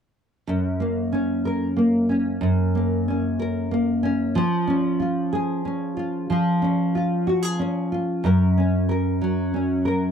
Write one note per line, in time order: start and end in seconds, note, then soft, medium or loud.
0.47 2.40 F#2 soft
0.80 1.75 A#3 soft
1.12 2.09 C#4 soft
1.45 3.38 A#4 soft
1.77 2.74 A#3 soft
2.09 3.08 C#4 soft
2.41 4.35 F#2 medium
2.75 3.70 A#3 soft
3.08 4.03 C#4 soft
3.39 4.43 A#4 soft
3.71 4.42 A#3 soft
4.03 4.67 C#4 soft
4.35 6.29 F3 medium
4.67 5.65 C#4 soft
5.00 5.96 F4 soft
5.33 7.27 G#4 soft
5.65 6.61 C#4 soft
5.97 6.94 F4 soft
6.30 8.24 F3 medium
6.62 7.59 C#4 soft
6.95 7.91 F4 soft
7.27 7.42 F#4 soft
7.42 8.24 G#4 soft
7.59 8.58 C#4 soft
7.92 8.31 F4 soft
8.24 10.12 F#2 soft
8.24 8.88 A#4 soft
8.58 9.53 C#4 soft
8.89 9.84 A#4 soft
9.21 10.12 F#3 soft
9.54 10.12 C#4 soft
9.85 10.12 A#4 soft